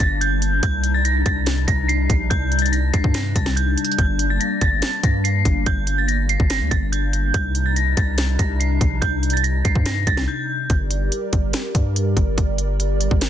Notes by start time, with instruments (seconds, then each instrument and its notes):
Already playing: analog synth pad G3 A#3 D4
0.00 808-style bass G1, synth bell A6, closed hi-hat
0.21 synth bell G6, closed hi-hat
0.42 closed hi-hat
0.63 808-style bass C2, analog synth pad C3 D#4, synth bell G6, kick, closed hi-hat
0.84 closed hi-hat
0.94 synth bell A6
1.05 synth bell A#6, closed hi-hat
1.26 808-style bass C2, synth bell A6, kick, closed hi-hat
1.46 snare, closed hi-hat
1.67 808-style bass C2, synth bell A#6, kick, closed hi-hat
1.88 synth bell C7, closed hi-hat
2.10 808-style bass A#1, kick, closed hi-hat
2.30 808-style bass C2, synth bell G6, kick, closed hi-hat
2.52 closed hi-hat
2.59 synth bell A6, closed hi-hat
2.66 closed hi-hat
2.72 synth bell A#6, closed hi-hat
2.93 808-style bass C2, synth bell C7, kick, closed hi-hat
3.04 808-style bass G2, kick
3.14 synth bell A#6, snare, closed hi-hat
3.36 808-style bass C2, synth bell A6, kick, closed hi-hat
3.46 snare
3.56 synth bell G6, closed hi-hat
3.78 closed hi-hat
3.85 closed hi-hat
3.92 closed hi-hat
3.98 808-style bass G1, analog synth pad A#3, synth bell G6, kick, closed hi-hat
4.19 closed hi-hat
4.30 synth bell A6
4.40 synth bell A#6, closed hi-hat
4.61 808-style bass G1, synth bell A6, kick, closed hi-hat
4.82 snare, closed hi-hat
5.03 808-style bass G2, synth bell A#6, kick, closed hi-hat
5.24 synth bell C7, closed hi-hat
5.45 808-style bass G1, kick, closed hi-hat
5.66 808-style bass G1, synth bell G6, kick, closed hi-hat
5.87 closed hi-hat
5.98 synth bell A6
6.08 synth bell A#6, closed hi-hat
6.29 synth bell C7, closed hi-hat
6.40 808-style bass G1, kick
6.50 synth bell A#6, snare, closed hi-hat
6.61 808-style bass D2
6.71 808-style bass G1, synth bell A6, kick, closed hi-hat
6.92 synth bell G6, closed hi-hat
7.13 closed hi-hat
7.34 808-style bass C2, analog synth pad C3 G3 D4 D#4, synth bell G6, kick, closed hi-hat
7.55 closed hi-hat
7.66 synth bell A6
7.76 synth bell A#6, closed hi-hat
7.97 808-style bass C2, synth bell A6, kick, closed hi-hat
8.18 snare, closed hi-hat
8.39 808-style bass C2, synth bell A#6, kick, closed hi-hat
8.60 synth bell C7, closed hi-hat
8.81 808-style bass A#1, kick, closed hi-hat
9.02 808-style bass C2, synth bell G6, kick, closed hi-hat
9.23 closed hi-hat
9.30 synth bell A6, closed hi-hat
9.37 closed hi-hat
9.44 synth bell A#6, closed hi-hat
9.65 808-style bass C2, synth bell C7, kick, closed hi-hat
9.75 808-style bass G2, kick
9.86 synth bell A#6, snare, closed hi-hat
10.07 808-style bass C2, synth bell A6, kick, closed hi-hat
10.17 snare
10.28 synth bell G6
10.70 808-style bass G1, analog synth pad G3 G4 A#4 D5, kick, closed hi-hat
10.91 closed hi-hat
11.12 closed hi-hat
11.33 808-style bass G1, kick, closed hi-hat
11.53 snare, closed hi-hat
11.75 808-style bass G2, kick, closed hi-hat
11.96 closed hi-hat
12.17 808-style bass G1, kick, closed hi-hat
12.38 808-style bass G1, kick, closed hi-hat
12.58 closed hi-hat
12.80 closed hi-hat
13.01 closed hi-hat
13.11 808-style bass G1, kick
13.21 snare, closed hi-hat